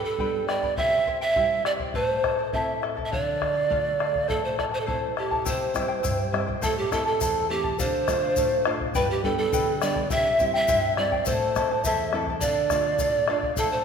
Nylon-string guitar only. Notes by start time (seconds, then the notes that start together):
Already playing: G2
0.18 G3 B3 D4
0.78 C3
1.36 G3 C4 E4
1.94 A2
2.53 A3 C4 E4
3.12 D3
3.70 A3 D4 F4
4.29 A2
4.87 A3 C4 E4
5.46 C3
5.74 G3 C4 E4
6.03 G2
6.32 G3 C4 E4
6.62 A2
6.91 A3 C4 E4
7.21 E2
7.50 A3 C4 E4
7.79 D3
8.08 A3 D4 F4
8.37 A2
8.66 A3 D4 F4
8.95 G2
9.23 G3 B3 D4
9.53 D3
9.82 G3 B3 D4
10.12 C3
10.40 G3 C4 E4
10.69 G2
10.98 G3 C4 E4
11.27 A2
11.55 A3 C4 E4
11.85 E2
12.13 A3 C4 E4
12.43 D3
12.71 A3 D4 F4
13.00 A2
13.29 A3 D4 F4
13.58 A2